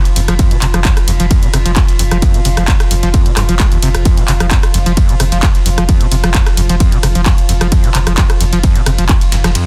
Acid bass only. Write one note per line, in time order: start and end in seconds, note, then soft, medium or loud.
0.16 0.20 F2 loud
0.28 0.34 F3 loud
0.39 0.53 F2 medium
0.51 0.57 C3 loud
0.62 0.66 C3 loud
0.74 0.80 F3 medium
0.85 0.91 F2 loud
1.08 1.12 F2 loud
1.20 1.26 F3 loud
1.31 1.44 F2 medium
1.43 1.49 C3 loud
1.54 1.58 C3 loud
1.66 1.72 F3 medium
1.76 1.83 F2 loud
1.99 2.03 F2 loud
2.11 2.17 F3 loud
2.22 2.36 F2 medium
2.34 2.40 C3 loud
2.45 2.49 C3 loud
2.57 2.63 F3 medium
2.68 2.75 F2 loud
2.91 2.95 F2 loud
3.03 3.09 F3 loud
3.14 3.27 F2 medium
3.26 3.32 C3 loud
3.37 3.43 G2 loud
3.49 3.55 F3 loud
3.60 3.66 G#3 medium
3.72 3.78 D#2 loud
3.83 3.89 C3 loud
4.05 4.19 F2 medium
4.18 4.24 C3 loud
4.28 4.32 C3 loud
4.40 4.46 F3 medium
4.51 4.58 F2 loud
4.74 4.78 F2 loud
4.86 4.92 F3 loud
4.97 5.11 F2 medium
5.09 5.15 C3 loud
5.20 5.24 C3 loud
5.32 5.38 F3 medium
5.43 5.50 F2 loud
5.66 5.70 F2 loud
5.78 5.84 F3 loud
5.89 6.02 F2 medium
6.01 6.07 C3 loud
6.12 6.16 C3 loud
6.24 6.30 F3 medium
6.35 6.41 F2 loud
6.57 6.61 F2 loud
6.69 6.75 F3 loud
6.80 6.94 F2 medium
6.92 6.98 C3 loud
7.03 7.07 C3 loud
7.15 7.21 F3 medium
7.26 7.33 F2 loud
7.49 7.53 F2 loud
7.61 7.67 F3 loud
7.72 7.86 F2 medium
7.84 7.90 C3 loud
7.95 7.99 C3 loud
8.07 8.13 F3 medium
8.18 8.24 F2 loud
8.41 8.45 F2 loud
8.53 8.59 F3 loud
8.63 8.77 F2 medium
8.76 8.82 C3 loud
8.86 8.90 C3 loud
8.98 9.04 F3 medium
9.09 9.16 F2 loud
9.32 9.36 F2 loud
9.44 9.50 F3 loud
9.55 9.66 F2 medium